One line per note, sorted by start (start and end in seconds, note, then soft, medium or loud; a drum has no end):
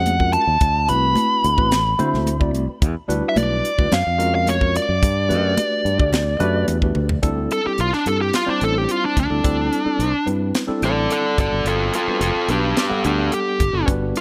0.00 0.36 F2 medium
0.00 0.14 G#3 medium
0.00 0.14 C#4 medium
0.00 0.14 F#4 medium
0.00 0.14 G#4 medium
0.00 0.15 C5 medium
0.00 0.33 F#5 medium
0.06 closed hi-hat medium
0.06 high conga medium
0.19 0.43 G#3 medium
0.19 0.44 C#4 medium
0.19 0.43 F4 medium
0.19 0.44 F#4 medium
0.19 0.44 A#4 medium
0.19 kick medium
0.33 0.90 A5 loud
0.33 closed hi-hat medium
0.33 muted conga soft
0.47 0.59 D#2 medium
0.47 0.55 A#4 soft
0.61 0.91 D2 medium
0.61 kick loud
0.61 closed hi-hat medium
0.61 muted conga soft
0.88 1.13 C2 medium
0.88 1.48 A3 medium
0.88 1.48 C4 medium
0.88 1.48 E4 medium
0.88 1.48 F#4 medium
0.88 1.49 B4 loud
0.88 2.50 B5 medium
0.88 closed hi-hat medium
0.88 muted conga soft
1.16 closed hi-hat medium
1.16 high conga medium
1.44 1.56 D2 medium
1.44 closed hi-hat medium
1.57 1.93 A1 medium
1.57 1.69 A3 medium
1.57 1.70 C4 medium
1.57 1.69 E4 medium
1.57 1.70 F#4 medium
1.57 1.70 B4 loud
1.57 kick medium
1.71 snare loud
1.71 closed hi-hat medium
1.71 muted conga soft
1.71 low conga medium
1.99 2.15 D3 medium
1.99 2.35 A3 loud
1.99 2.35 C4 medium
1.99 2.35 E4 loud
1.99 2.35 F#4 loud
1.99 2.35 C5 loud
1.99 closed hi-hat medium
1.99 high conga medium
2.14 2.54 D2 medium
2.14 snare soft
2.26 closed hi-hat medium
2.26 high conga medium
2.40 2.64 A3 medium
2.40 2.64 C4 medium
2.40 2.64 E4 medium
2.40 2.64 F#4 medium
2.40 2.65 D5 medium
2.40 kick medium
2.54 2.66 C2 medium
2.54 closed hi-hat medium
2.54 muted conga soft
2.69 2.75 F#4 soft
2.69 2.76 B4 soft
2.69 muted fingered electric bass stroke soft
2.82 2.94 E2 loud
2.82 kick loud
2.82 closed hi-hat medium
2.82 muted conga soft
3.08 3.21 D2 medium
3.08 3.68 G3 loud
3.08 3.69 D4 loud
3.08 3.69 E4 medium
3.08 3.69 F#4 medium
3.08 3.69 B4 loud
3.08 closed hi-hat medium
3.08 muted conga soft
3.29 3.36 E5 medium
3.36 3.60 B1 medium
3.36 3.94 D5 medium
3.36 closed hi-hat medium
3.36 high conga medium
3.65 closed hi-hat medium
3.78 3.90 D2 medium
3.78 3.90 G3 medium
3.78 3.90 D4 medium
3.78 3.90 E4 medium
3.78 3.91 F#4 medium
3.78 3.90 B4 medium
3.78 kick medium
3.92 4.04 F#2 loud
3.92 3.99 F#4 soft
3.92 3.99 A#4 soft
3.92 4.32 F5 loud
3.92 snare loud
3.92 closed hi-hat medium
3.92 muted conga soft
3.92 high conga medium
4.07 4.77 F2 medium
4.18 4.55 G#3 loud
4.18 4.55 C#4 medium
4.18 4.55 F4 medium
4.18 4.55 F#4 medium
4.18 4.55 A#4 loud
4.18 closed hi-hat medium
4.35 4.49 F5 medium
4.47 4.74 C#5 medium
4.47 closed hi-hat medium
4.47 high conga medium
4.60 4.85 G#3 medium
4.60 4.85 C#4 medium
4.60 4.85 F4 medium
4.60 4.85 F#4 medium
4.60 4.85 A#4 medium
4.60 kick medium
4.75 6.65 D5 medium
4.75 closed hi-hat medium
4.75 muted conga soft
4.87 5.01 F#2 medium
4.87 4.95 F#4 soft
4.87 4.95 A#4 soft
5.02 5.32 G2 loud
5.02 kick loud
5.02 closed hi-hat medium
5.02 muted conga soft
5.28 5.54 F#2 medium
5.28 5.89 A3 medium
5.28 5.89 D4 medium
5.28 5.89 F#4 medium
5.28 5.89 G4 medium
5.28 5.89 B4 medium
5.28 closed hi-hat medium
5.28 muted conga soft
5.57 closed hi-hat medium
5.57 high conga medium
5.85 5.97 G2 medium
5.85 closed hi-hat soft
5.98 6.35 D2 medium
5.98 6.10 A3 medium
5.98 6.10 D4 medium
5.98 6.10 F#4 medium
5.98 6.11 G4 medium
5.98 6.11 D5 medium
5.98 kick medium
6.13 6.20 G4 soft
6.13 6.20 D5 soft
6.13 snare loud
6.13 closed hi-hat medium
6.13 muted conga soft
6.13 low conga medium
6.39 6.66 F#2 medium
6.39 6.76 A3 loud
6.39 6.76 D4 loud
6.39 6.76 F#4 loud
6.39 6.76 G4 medium
6.39 6.76 B4 loud
6.39 closed hi-hat soft
6.39 low conga medium
6.68 6.93 E2 medium
6.68 closed hi-hat medium
6.68 high conga medium
6.82 7.06 A3 medium
6.82 7.06 D4 medium
6.82 7.07 F#4 medium
6.82 7.07 G4 medium
6.82 7.07 B4 medium
6.82 kick medium
6.95 7.21 D2 medium
6.95 high tom medium
6.95 muted conga soft
7.09 7.16 G4 soft
7.09 7.17 B4 soft
7.09 floor tom medium
7.22 7.47 D2 medium
7.22 7.59 G3 loud
7.22 7.59 C4 medium
7.22 7.59 D4 medium
7.22 7.59 E4 medium
7.22 7.59 A4 loud
7.22 kick loud
7.22 closed hi-hat medium
7.51 7.66 A4 medium
7.51 closed hi-hat medium
7.64 7.77 G3 medium
7.64 7.77 C4 medium
7.64 7.77 D4 medium
7.64 7.77 E4 medium
7.64 7.79 G4 medium
7.64 7.77 A4 medium
7.64 muted fingered electric bass stroke soft
7.78 7.91 C2 medium
7.78 7.85 E4 soft
7.78 7.94 F4 medium
7.78 closed hi-hat medium
7.93 8.07 D4 medium
7.93 snare soft
8.06 8.30 G2 medium
8.06 8.42 G3 medium
8.06 8.42 C4 medium
8.06 8.42 D4 medium
8.06 8.42 E4 medium
8.06 8.43 G4 medium
8.06 8.21 A4 medium
8.06 closed hi-hat medium
8.22 8.34 G4 medium
8.33 8.48 F4 medium
8.33 snare medium
8.33 closed hi-hat medium
8.46 9.19 G3 medium
8.46 9.19 C4 medium
8.46 9.19 D4 medium
8.46 8.62 D4 medium
8.46 9.19 E4 medium
8.46 9.19 C5 loud
8.46 muted fingered electric bass stroke soft
8.61 8.85 A1 medium
8.61 8.78 A4 medium
8.61 closed hi-hat medium
8.78 8.91 G4 medium
8.89 9.04 F4 medium
8.89 closed hi-hat medium
9.05 9.18 D4 medium
9.17 9.29 D2 medium
9.17 10.26 D4 medium
9.17 kick medium
9.17 closed hi-hat medium
9.29 9.43 D2 medium
9.29 9.42 G3 medium
9.29 9.42 C4 medium
9.29 9.42 D4 medium
9.29 9.43 E4 medium
9.29 9.43 A4 medium
9.44 9.68 D2 medium
9.44 9.80 G3 medium
9.44 9.80 C4 medium
9.44 9.80 D4 medium
9.44 9.80 E4 medium
9.44 9.81 A4 medium
9.44 kick medium
9.44 closed hi-hat medium
9.73 closed hi-hat medium
9.84 9.97 G3 medium
9.84 9.98 C4 medium
9.84 9.98 D4 medium
9.84 9.97 E4 medium
9.84 9.98 A4 medium
9.84 muted fingered electric bass stroke soft
9.99 10.12 C2 medium
9.99 10.06 E4 soft
9.99 10.07 F#4 soft
9.99 closed hi-hat medium
10.14 muted fingered electric bass stroke soft
10.26 10.51 G2 medium
10.26 10.63 G3 medium
10.26 10.63 C4 medium
10.26 10.63 D4 medium
10.26 10.63 E4 medium
10.26 10.63 B4 medium
10.26 closed hi-hat soft
10.55 snare loud
10.55 closed hi-hat medium
10.67 11.37 G3 medium
10.67 11.38 C4 medium
10.67 11.37 D4 medium
10.67 11.38 E4 medium
10.67 11.37 A4 loud
10.67 muted fingered electric bass stroke soft
10.82 11.06 A1 medium
10.82 11.11 A4 medium
10.82 11.11 D5 medium
10.82 closed hi-hat medium
11.10 11.37 A4 medium
11.10 11.39 D5 medium
11.10 closed hi-hat medium
11.37 11.50 G1 medium
11.37 11.98 G3 medium
11.37 11.98 B3 medium
11.37 11.98 D4 medium
11.37 11.98 F#4 medium
11.37 11.98 A4 medium
11.37 11.65 A4 medium
11.37 11.67 D5 medium
11.37 kick loud
11.37 closed hi-hat medium
11.53 11.64 G1 medium
11.65 11.89 G1 medium
11.65 11.93 F4 medium
11.65 11.94 A4 medium
11.65 closed hi-hat medium
11.94 12.21 F4 medium
11.94 12.21 A4 medium
11.94 closed hi-hat medium
12.08 12.20 G3 medium
12.08 12.20 B3 medium
12.08 12.20 D4 medium
12.08 12.20 F#4 medium
12.08 12.20 B4 medium
12.08 muted fingered electric bass stroke soft
12.21 12.33 F#1 medium
12.21 12.48 F4 medium
12.21 12.49 A4 medium
12.21 closed hi-hat medium
12.36 muted fingered electric bass stroke soft
12.48 12.72 B1 medium
12.48 12.85 G3 medium
12.48 12.85 B3 medium
12.48 12.85 D4 medium
12.48 12.76 D4 medium
12.48 12.86 F#4 medium
12.48 12.77 G4 medium
12.48 12.86 B4 medium
12.48 closed hi-hat medium
12.77 13.04 D4 medium
12.77 13.05 G4 medium
12.77 snare loud
12.77 closed hi-hat medium
12.90 13.62 G3 loud
12.90 13.62 B3 medium
12.90 13.62 D4 medium
12.90 13.62 A4 loud
12.90 13.62 F#5 medium
12.90 muted fingered electric bass stroke soft
13.04 13.28 D2 medium
13.04 13.31 D4 medium
13.04 13.32 G4 medium
13.04 closed hi-hat medium
13.32 13.87 G4 medium
13.32 closed hi-hat medium
13.60 13.72 G1 medium
13.60 kick medium
13.60 closed hi-hat medium
13.73 13.85 G1 medium
13.73 13.85 G3 medium
13.73 13.85 B3 medium
13.73 13.85 D4 medium
13.73 13.85 F#4 medium
13.73 13.86 A4 medium
13.86 14.11 G1 medium
13.86 14.21 G3 medium
13.86 14.21 B3 medium
13.86 14.21 D4 medium
13.86 14.21 F#4 medium
13.86 14.21 B4 loud
13.86 kick loud
13.86 closed hi-hat medium
14.16 14.21 G4 loud
14.16 closed hi-hat medium